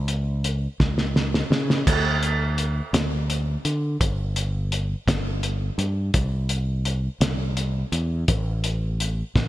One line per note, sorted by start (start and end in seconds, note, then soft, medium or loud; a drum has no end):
0.00 0.66 C#2 loud
0.08 closed hi-hat medium
0.44 closed hi-hat medium
0.80 1.42 C#2 medium
0.80 kick medium
0.80 snare medium
0.98 snare medium
1.16 snare medium
1.34 snare medium
1.50 1.82 C#3 medium
1.50 snare loud
1.70 snare medium
1.87 2.80 D2 loud
1.87 kick loud
1.87 closed hi-hat medium
1.87 crash loud
2.23 closed hi-hat medium
2.58 closed hi-hat medium
2.93 3.55 D2 medium
2.93 snare loud
2.93 closed hi-hat medium
3.30 closed hi-hat medium
3.65 3.96 D3 medium
3.65 closed hi-hat medium
4.00 4.93 G1 medium
4.00 kick loud
4.00 closed hi-hat loud
4.36 closed hi-hat medium
4.72 closed hi-hat medium
5.07 5.69 G1 loud
5.07 kick medium
5.07 snare loud
5.07 closed hi-hat medium
5.43 closed hi-hat medium
5.78 6.09 G2 loud
5.78 closed hi-hat medium
6.14 7.07 C2 loud
6.14 kick loud
6.14 closed hi-hat loud
6.49 closed hi-hat medium
6.85 closed hi-hat medium
7.20 7.83 C2 loud
7.20 snare loud
7.20 closed hi-hat loud
7.57 closed hi-hat medium
7.92 8.23 E2 loud
7.92 closed hi-hat medium
8.28 9.22 A1 loud
8.28 kick loud
8.28 closed hi-hat loud
8.64 closed hi-hat medium
9.00 closed hi-hat medium
9.35 9.48 A1 loud
9.35 kick medium
9.35 snare medium